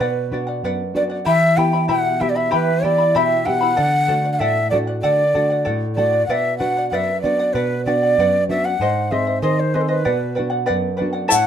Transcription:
Already playing: quena B4
0.00 nylon-string guitar B2, charango B4 D5 F#5
0.31 nylon-string guitar B3 D4 F#4, charango B4 D5 F#5
0.47 charango D5 F#5
0.63 nylon-string guitar F#2, charango B4 D5 F#5
0.94 nylon-string guitar B3 D4 F#4, charango B4 D5 F#5, quena D5
1.10 charango D5 F#5
1.25 nylon-string guitar E3, charango E4 G4 E5 G5 B5, quena E5
1.57 nylon-string guitar B3 E4 G4, charango E4 E5 G5 B5, quena G5
1.73 charango E4 E5 B5
1.88 nylon-string guitar B2, charango E4 G4 E5 B5, quena F#5
2.20 nylon-string guitar B3 E4 G4, charango E4 E5 G5 B5, quena E5
2.30 quena D5
2.35 charango E4 E5 B5, quena E5
2.51 nylon-string guitar E3, charango E4 G4 E5 G5 B5, quena B4
2.83 nylon-string guitar B3 E4 G4, charango E4 E5 G5 B5, quena D5
2.98 charango E4 E5 B5
3.15 nylon-string guitar B2, charango E4 G4 E5 G5 B5, quena E5
3.45 nylon-string guitar B3 E4 G4, charango E4 E5 G5 B5, quena F#5
3.61 charango E4 E5 B5
3.76 nylon-string guitar D3, charango A4 D5 F#5
4.08 nylon-string guitar A3 D4 F#4, charango A4 D5 F#5
4.24 charango D5 F#5
4.33 quena F#5
4.39 nylon-string guitar A2, charango A4 D5 F#5, quena E5
4.70 nylon-string guitar A3 D4 F#4, charango A4 D5 F#5, quena D5
4.87 charango D5 F#5
5.02 nylon-string guitar D3, charango A4 D5 F#5, quena D5
5.34 nylon-string guitar A3 D4 F#4, charango A4 D5 F#5
5.50 charango D5 F#5
5.65 nylon-string guitar A2, charango A4 D5 F#5
5.96 nylon-string guitar A3 D4 F#4, charango A4 D5 F#5, quena D5
6.13 charango D5 F#5
6.26 nylon-string guitar B2, charango B4 D5, quena F#5
6.31 quena E5, charango F#5
6.58 nylon-string guitar B3 D4 F#4, charango B4 D5 F#5, quena F#5
6.77 charango D5 F#5
6.90 nylon-string guitar F#2, charango B4 D5, quena F#5
6.94 quena E5, charango F#5
7.22 nylon-string guitar B3 D4 F#4, charango B4 D5 F#5, quena D5
7.39 charango D5 F#5
7.53 nylon-string guitar B2, quena B4, charango B4 D5 F#5
7.85 nylon-string guitar B3 D4 F#4, charango B4 D5 F#5, quena D5
8.03 charango D5 F#5
8.18 nylon-string guitar F#2, charango B4 D5 F#5
8.49 nylon-string guitar B3 D4 F#4, charango B4 D5 F#5, quena E5
8.65 charango D5 F#5, quena F#5
8.80 nylon-string guitar G#2, charango G#4 C5 D#5
9.11 nylon-string guitar C4 G#4, charango G#4 C5 D#5, quena E5
9.27 charango C5 D#5
9.42 nylon-string guitar D#3, charango G#4 C5 D#5, quena D#5
9.60 quena C5
9.74 nylon-string guitar C4 D#4 G#4, charango G#4 C5 D#5, quena B4
9.81 quena A4
9.88 quena B4, charango C5 D#5
10.05 nylon-string guitar B2, charango B4 D5 F#5
10.35 nylon-string guitar B3 D4, charango B4 D5 F#5
10.39 nylon-string guitar F#4
10.50 charango D5 F#5
10.66 nylon-string guitar F#2, charango B4 D5 F#5
10.97 nylon-string guitar B3, charango B4 D5 F#5
11.01 nylon-string guitar D4 F#4
11.13 charango D5 F#5
11.28 nylon-string guitar A2, charango E4 A4 C#5 E5 A5, quena F#5, shaker

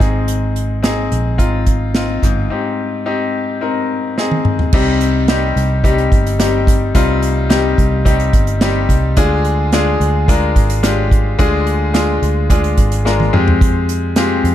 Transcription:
0.00 fingered electric bass G#1, grand piano G#2 C4 D#4 G#4, kick, snare, closed hi-hat
0.28 closed hi-hat
0.56 closed hi-hat
0.82 grand piano C4 D#4 G#4, snare, closed hi-hat
1.12 fingered electric bass A#1, closed hi-hat
1.38 fingered electric bass G#1, grand piano C4 D#4 F4, kick, closed hi-hat
1.66 kick, closed hi-hat
1.95 grand piano C4 D#4 F4, snare, closed hi-hat
2.22 fingered electric bass G1, grand piano G#2, kick, snare, closed hi-hat
2.50 grand piano C4 D#4 G4
3.06 grand piano C4 D#4 G4
3.61 grand piano C4 D#4 A#4
4.18 grand piano C4 D#4 G#4, snare
4.31 high tom
4.45 mid tom
4.59 floor tom
4.73 fingered electric bass C2, grand piano C3 G3 C4 D#4 G4, kick, crash
5.01 closed hi-hat
5.28 grand piano G3 C4 D#4 G4, snare, closed hi-hat
5.56 fingered electric bass C2, closed hi-hat
5.84 grand piano G3 C4 D#4 G4, kick, closed hi-hat
5.98 closed hi-hat
6.12 fingered electric bass G1, kick, closed hi-hat
6.27 closed hi-hat
6.39 grand piano G3 C4 D#4 G4, snare, closed hi-hat
6.67 kick, closed hi-hat
6.95 fingered electric bass C2, grand piano C3 G3 C4 D#4 F4, kick, closed hi-hat
7.22 closed hi-hat
7.49 grand piano G3 C4 D#4 G4, snare, closed hi-hat
7.78 fingered electric bass C2, kick, closed hi-hat
8.05 grand piano G3 C4 D#4 G4, kick, closed hi-hat
8.20 closed hi-hat
8.33 fingered electric bass G1, kick, closed hi-hat
8.47 closed hi-hat
8.61 grand piano G3 C4 D#4 G4, snare, closed hi-hat
8.89 fingered electric bass C2, kick, closed hi-hat
9.17 fingered electric bass D2, grand piano D3 G#3 D4 F4 G#4, kick, closed hi-hat
9.45 closed hi-hat
9.72 grand piano G#3 D4 F4 G#4, snare, closed hi-hat
10.00 fingered electric bass D2, closed hi-hat
10.28 grand piano G#3 D4 F4 A#4, kick, closed hi-hat
10.56 fingered electric bass G#1, kick, closed hi-hat
10.70 closed hi-hat
10.83 grand piano G#3 D4 F4 G4, snare, closed hi-hat
11.11 kick, closed hi-hat
11.39 fingered electric bass D2, grand piano D3 G#3 D4 F4 G#4, kick, closed hi-hat
11.67 closed hi-hat
11.94 grand piano G#3 D4 F4 G#4, snare, closed hi-hat
12.22 fingered electric bass D2, closed hi-hat
12.50 grand piano G#3 D4 F4 G#4, kick, closed hi-hat
12.64 closed hi-hat
12.77 fingered electric bass G#1, kick, closed hi-hat
12.92 closed hi-hat
13.05 grand piano G#3 D4 F4 A#4, snare
13.20 high tom
13.33 fingered electric bass F2, grand piano G#3 C4 F4 G4, mid tom
13.48 floor tom
13.61 kick, closed hi-hat
13.89 closed hi-hat
14.16 grand piano G#3 C4 F4 G4, snare, closed hi-hat
14.44 fingered electric bass F2, closed hi-hat

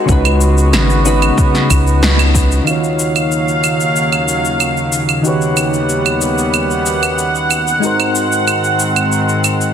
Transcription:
Already playing: synth keys G#3 F#4 A#4 C5, string section G#3, nylon-string guitar F#4
0.05 analog synth bass C#2, synth keys C#3 C#4 D#4, string section C#3 B3 F#4, kick, shaker
0.10 synth keys F#4 B4
0.25 claves, shaker
0.41 shaker
0.58 shaker
0.72 analog synth bass G#1, snare, claves, shaker
0.90 shaker
1.04 synth keys C#3 C#4 D#4 F#4 B4, shaker
1.22 claves, shaker
1.38 kick, shaker
1.55 snare, shaker
1.70 analog synth bass C#2, kick, claves, shaker
1.87 shaker
2.03 snare, shaker
2.19 claves, shaker
2.35 kick, shaker
2.52 shaker
2.64 string section D#2 C#3 F#3 F5, synth keys D#3 D#4 F4, claves, shaker
2.69 synth keys F#4 C#5
2.84 shaker
3.00 shaker
3.16 claves, shaker
3.32 shaker
3.48 shaker
3.64 claves, shaker
3.80 shaker
3.96 shaker
4.12 claves, shaker
4.28 shaker
4.45 shaker
4.60 claves, shaker
4.77 shaker
4.93 shaker
5.09 claves, shaker
5.22 string section D#2 G3 B3 F#5, synth keys D#3 D#4 F#4 G4, shaker
5.27 synth keys B4 C#5
5.41 shaker
5.57 claves, shaker
5.74 shaker
5.89 shaker
6.06 claves, shaker
6.21 shaker
6.38 shaker
6.54 claves, shaker
6.71 shaker
6.86 shaker
7.03 claves, shaker
7.19 shaker
7.35 shaker
7.51 claves, shaker
7.67 shaker
7.80 string section G#2 D#3 C4, synth keys G#3 D#4 F#4, shaker
7.85 synth keys A#4 C5
8.00 claves, shaker
8.15 shaker
8.32 shaker
8.48 claves, shaker
8.64 shaker
8.80 shaker
8.96 claves, shaker
9.12 shaker
9.29 shaker
9.44 claves, shaker
9.61 shaker

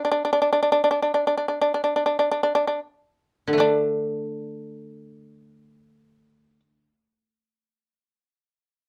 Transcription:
0.05 shamisen D4
0.12 shamisen D4
0.25 shamisen D4
0.33 shamisen D4
0.42 shamisen D4
0.53 shamisen D4
0.63 shamisen D4
0.72 shamisen D4
0.84 shamisen D4
0.91 shamisen D4
1.02 shamisen D4
1.14 shamisen D4
1.27 shamisen D4
1.38 shamisen D4
1.48 shamisen D4
1.62 shamisen D4
1.74 shamisen D4
1.84 shamisen D4
1.96 shamisen D4
2.06 shamisen D4
2.19 shamisen D4
2.31 shamisen D4
2.43 shamisen D4
2.55 shamisen D4
2.67 shamisen D4
3.48 koto D3
3.53 koto A3
3.58 koto D4, shamisen D4

